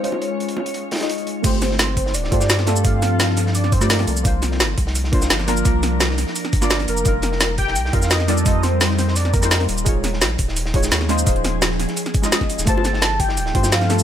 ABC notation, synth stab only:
X:1
M:4/4
L:1/16
Q:1/4=171
K:Gm
V:1 name="Synth stab"
[_A,EFc]2 z8 z [A,EFe]4- [A,EFe] | [A,FGc]8- [A,FGc]2 [A,FGc]4 [A,FGA]2 | [A,FGA]2 z8 z [A,FGd]3 z2 | [B,DFc]8- [B,DFc]2 [B,DFc]4 [B,DFB]2 |
[B,DFB]2 z8 z [B,DFd]3 z2 | [G,EFB]8- [G,EFB]2 [G,EFB]4 [G,EFA]2 | [G,EFA]2 z8 z [G,EFc]4- [G,EFc] | [_A,EF_d]8- [A,EFd]2 [A,EFd]4 [A,EFc]2 |
[_A,EFc]2 z8 z [A,EFe]4- [A,EFe] | [A,FGc]8- [A,FGc]2 [A,FGc]4 [A,FGA]2 |]